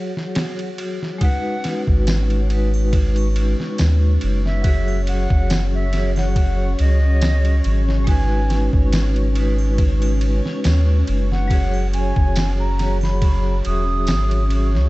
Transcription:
Already playing: vibraphone F#3 F#4 G#4 C#5, synth texture F#4
0.17 snare
0.35 snare, ride
0.59 ride
0.78 ride
1.03 snare
1.18 vibraphone G#3 D#4, string machine C#4 C#5, synth texture C#5, flute F#5, kick, ride
1.23 vibraphone F#4 B4
1.64 snare, ride
1.87 sub bass G#1, kick
2.07 snare, ride, tambourine
2.30 ride
2.47 vibraphone G#3 D#4 F#4, ride
2.53 vibraphone B4
2.74 triangle
2.93 kick, ride
3.16 ride, triangle
3.36 ride
3.60 snare
3.78 sub bass D#2, snare, ride, tambourine
4.21 sub bass F#1, ride
4.46 flute E5, snare
4.62 vibraphone F#3 F#4 G#4, kick, ride
4.67 vibraphone C#5
4.88 triangle
5.07 flute F#5, ride
5.30 sub bass F#1, kick
5.50 snare, ride, tambourine
5.74 flute E5
5.91 vibraphone F#3 F#4 G#4, snare, ride
5.97 vibraphone C#5
6.16 flute F#5, snare, triangle
6.36 kick, ride
6.79 sub bass C#2, flute D#5, ride
7.21 snare, ride, tambourine
7.45 ride
7.64 sub bass G#1, ride
7.88 snare
8.04 vibraphone G#3 D#4, flute G#5, kick, ride
8.09 vibraphone F#4 B4
8.50 snare, ride
8.73 sub bass G#1, kick
8.92 snare, ride, tambourine
9.16 ride
9.33 vibraphone G#3 D#4, ride
9.37 vibraphone F#4 B4
9.58 triangle
9.78 kick, ride
10.02 ride, triangle
10.21 ride
10.45 snare
10.64 sub bass D#2, snare, ride, tambourine
11.07 sub bass F#1, ride
11.32 flute F#5, snare
11.48 vibraphone F#3 F#4 G#4, kick, ride
11.54 vibraphone C#5
11.74 triangle
11.93 flute G#5, ride
12.16 sub bass F#1, kick
12.36 snare, ride, tambourine
12.59 flute A#5
12.78 vibraphone F#3 F#4 G#4 C#5, snare, ride
13.01 flute B5, snare, triangle
13.22 kick, ride
13.63 sub bass E1, vibraphone F#3 F#4 G#4, flute D#6, ride
13.68 vibraphone E5
14.07 sub bass G#1, snare, ride, tambourine
14.31 ride
14.50 ride
14.75 sub bass C#2, snare

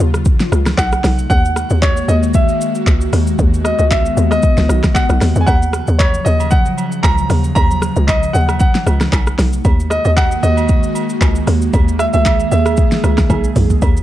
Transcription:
Already playing: analog synth pad C#3 F#3 F4
0.00 log drum bass D#2, shaker
0.14 cross-stick, shaker
0.25 kick, shaker
0.40 snare, shaker
0.52 log drum bass C#2, cross-stick, shaker
0.66 cross-stick, snare, shaker
0.78 log drum bass B1, analog synth pad C3 A3 D#4, grand piano F#5, kick, clap, shaker
0.92 cross-stick, shaker
1.04 log drum bass B1, cross-stick, snare, open hi-hat, shaker
1.19 shaker
1.30 log drum bass D#2, analog synth pad D#3 G#3 A#3 F#4, grand piano F#5, kick, shaker
1.45 shaker
1.56 cross-stick, shaker
1.70 log drum bass D#2, shaker
1.82 grand piano C#5, kick, clap, shaker
1.97 shaker
2.08 log drum bass D#2, grand piano D#5, shaker
2.23 shaker
2.34 grand piano E5, kick, shaker
2.49 shaker
2.61 shaker
2.75 shaker
2.87 log drum bass C#2, kick, clap, shaker
3.01 shaker
3.13 log drum bass D#2, cross-stick, open hi-hat, shaker
3.27 shaker
3.39 log drum bass D#2, analog synth pad B3, kick, shaker
3.54 shaker
3.65 grand piano D#5, cross-stick, shaker
3.79 log drum bass C#2, grand piano D#5, shaker
3.91 grand piano E5, kick, clap, shaker
4.06 shaker
4.17 log drum bass D#2, shaker
4.31 grand piano D#5, cross-stick, shaker
4.42 kick, shaker
4.57 log drum bass C#2, snare, shaker
4.69 log drum bass B1, cross-stick, shaker
4.84 kick, cross-stick, snare, shaker
4.95 grand piano F#5, kick, clap, shaker
5.09 log drum bass B1, cross-stick, shaker
5.21 log drum bass D#2, cross-stick, snare, open hi-hat, shaker
5.36 log drum bass E2, shaker
5.41 grand piano G#5
5.47 log drum bass D#2, analog synth pad C#3 F3 F#3, grand piano F#5, kick, high agogo, shaker
5.62 shaker
5.73 cross-stick, shaker
5.87 log drum bass D#2, shaker
5.99 grand piano C#5, kick, clap, high agogo, shaker
6.14 shaker
6.25 log drum bass D#2, grand piano D#5, shaker
6.40 high agogo, shaker
6.51 grand piano F#5, kick, shaker
6.66 shaker
6.78 high agogo, shaker
6.92 shaker
7.03 log drum bass C#2, grand piano A#5, kick, clap, high agogo, low woodblock, shaker
7.18 shaker
7.30 log drum bass D#2, cross-stick, open hi-hat, shaker
7.44 shaker
7.55 log drum bass D#2, grand piano A#5, kick, high agogo, shaker
7.71 shaker
7.82 cross-stick, shaker
7.96 log drum bass C#2, shaker
8.07 grand piano D#5, kick, clap, high agogo, shaker
8.23 shaker
8.33 log drum bass D#2, grand piano F#5, shaker
8.49 cross-stick, high agogo, shaker
8.60 grand piano F#5, kick, shaker
8.75 snare, shaker
8.86 log drum bass C#2, cross-stick, high agogo, shaker
9.01 cross-stick, snare, shaker
9.12 log drum bass B1, analog synth pad C3 A3 D#4, kick, clap, high agogo, low woodblock, shaker
9.27 cross-stick, shaker
9.39 log drum bass B1, cross-stick, snare, open hi-hat, shaker
9.53 shaker
9.65 log drum bass D#2, analog synth pad D#3 G#3 A#3 F#4, kick, high agogo, shaker
9.80 shaker
9.90 grand piano D#5, cross-stick, shaker
10.05 log drum bass D#2, grand piano D#5, shaker
10.17 grand piano F#5, kick, clap, high agogo, shaker
10.32 shaker
10.43 log drum bass D#2, grand piano D#5, shaker
10.57 high agogo, shaker
10.68 kick, shaker
10.83 shaker
10.95 high agogo, shaker
11.10 shaker
11.21 log drum bass C#2, kick, clap, high agogo, low woodblock, shaker
11.36 shaker
11.47 log drum bass D#2, cross-stick, open hi-hat, shaker
11.62 shaker
11.73 log drum bass D#2, analog synth pad G#4, kick, high agogo, shaker
11.88 shaker
11.99 grand piano E5, cross-stick, shaker
12.13 log drum bass C#2, grand piano E5, shaker
12.25 kick, clap, high agogo, shaker
12.40 shaker
12.52 log drum bass D#2, grand piano E5, shaker
12.66 cross-stick, high agogo, shaker
12.77 kick, shaker
12.92 snare, shaker
13.04 log drum bass C#2, cross-stick, high agogo, shaker
13.18 kick, cross-stick, snare, shaker
13.30 log drum bass B1, kick, high tom, high agogo, low woodblock, shaker
13.44 shaker
13.56 log drum bass B1, mid tom, open hi-hat, shaker
13.70 floor tom, shaker
13.82 log drum bass D#2, analog synth pad C#3 F#3 F4, kick, high agogo, shaker
13.97 shaker

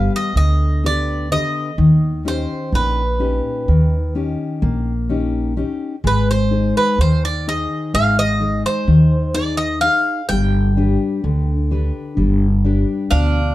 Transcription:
Already playing: steel-string acoustic guitar G3 B3 G4 B4, bouzouki F5
0.16 bouzouki D#5
0.36 upright bass D2, steel-string acoustic guitar D3, bouzouki D#5
0.84 steel-string acoustic guitar B3 G4 B4, bouzouki D5
1.31 steel-string acoustic guitar D3 G4 B4, bouzouki D#5
1.78 upright bass D#2, steel-string acoustic guitar D#3
2.25 steel-string acoustic guitar C#4 D#4 G4, bouzouki C5
2.72 upright bass A#1, steel-string acoustic guitar A#2, bouzouki B4
3.19 steel-string acoustic guitar C#4 D#4 G4
3.68 upright bass D#2, steel-string acoustic guitar D#3
4.15 steel-string acoustic guitar C#4 D#4 G4
4.62 upright bass A#1, steel-string acoustic guitar A#3
5.09 steel-string acoustic guitar C#4 D#4 G4
5.57 steel-string acoustic guitar C#4 D#4 G4
6.04 upright bass G#1, steel-string acoustic guitar G#3, bouzouki B4
6.31 bouzouki C5
6.51 steel-string acoustic guitar D#4 G#4 C5
6.77 bouzouki B4
6.98 upright bass D#2, steel-string acoustic guitar D#3, bouzouki C5
7.25 bouzouki D5
7.47 steel-string acoustic guitar D#4 G#4 C5, bouzouki D#5
7.94 upright bass G#1, steel-string acoustic guitar G#3, bouzouki F5
8.19 bouzouki D#5
8.40 steel-string acoustic guitar D#4 G#4 C5
8.66 bouzouki C5
8.87 upright bass D#2, steel-string acoustic guitar D#3
9.34 steel-string acoustic guitar D#4 G#4 C5, bouzouki D5
9.57 bouzouki D#5
9.81 steel-string acoustic guitar D#4 G#4 C5, bouzouki F5
10.29 upright bass G1, steel-string acoustic guitar G3, bouzouki G5
10.77 steel-string acoustic guitar D4 G4 B4
11.24 upright bass D2, steel-string acoustic guitar D3
11.71 steel-string acoustic guitar D4 G4 B4
12.17 upright bass G1, steel-string acoustic guitar G3
12.65 steel-string acoustic guitar D4 G4 B4
13.11 upright bass D2, steel-string acoustic guitar B2, bouzouki D4 F5

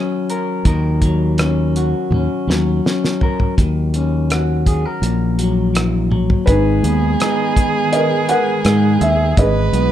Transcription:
Already playing: clean electric guitar D#3 F#3 C#4 F#4 A#4, felt piano F#4 A#4 C#5
0.30 clean electric guitar A#4, closed hi-hat
0.65 fingered electric bass D#2, clean electric guitar D#3 A#4, kick, closed hi-hat
1.02 clean electric guitar F#3, kick, closed hi-hat
1.38 clean electric guitar C#4, cross-stick, closed hi-hat
1.76 clean electric guitar F#4, closed hi-hat
2.11 fingered electric bass D#2, clean electric guitar C#4, high tom
2.47 fingered electric bass D#2, clean electric guitar F#3, snare
2.86 clean electric guitar C#4, snare
3.04 snare
3.21 clean electric guitar A#4, floor tom
3.40 floor tom
3.58 fingered electric bass D#2, clean electric guitar D#3, kick, closed hi-hat
3.94 clean electric guitar C#4, closed hi-hat
4.30 clean electric guitar F#4, cross-stick, closed hi-hat
4.66 clean electric guitar G#4, kick, closed hi-hat
4.86 clean electric guitar A#4
5.02 fingered electric bass A#1, clean electric guitar A#2, closed hi-hat
5.39 clean electric guitar F#3, closed hi-hat
5.74 clean electric guitar E3, cross-stick, closed hi-hat
6.11 clean electric guitar F#3, high tom
6.30 floor tom
6.46 fingered electric bass G#1, string section D#3 G#3 B3 G#4, felt piano D#4 B4, violin G#4, kick, closed hi-hat
6.83 fingered electric bass D#2, clean electric guitar B3, closed hi-hat
7.20 clean electric guitar B3 D#4, cross-stick, closed hi-hat
7.57 kick, closed hi-hat
7.92 felt piano A#4 B4 D#5, closed hi-hat
8.29 felt piano A#4 B4 F#5, closed hi-hat
8.65 fingered electric bass G#2, clean electric guitar G#3, cross-stick, closed hi-hat
9.01 fingered electric bass D#2, felt piano E5, closed hi-hat
9.36 fingered electric bass G#1, clean electric guitar G#2, string section E3 B3, felt piano G#4 B4 D#5, violin B4, kick, closed hi-hat
9.73 fingered electric bass B1, clean electric guitar B3, closed hi-hat

